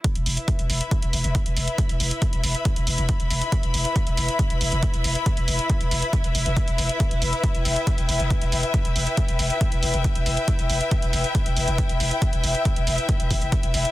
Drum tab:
HH |xxoxxxoxxxoxxxox|xxoxxxoxxxoxxxox|xxoxxxoxxxoxxxox|xxoxxxoxxxoxxxox|
BD |o---o---o---o---|o---o---o---o---|o---o---o---o---|o---o---o---o---|

HH |xxoxxxoxxxoxxxox|xxoxxxoxxxoxxxox|xxoxxxoxxxoxxxox|xxoxxxoxxxoxxxox|
BD |o---o---o---o---|o---o---o---o---|o---o---o---o---|o---o---o-o-o---|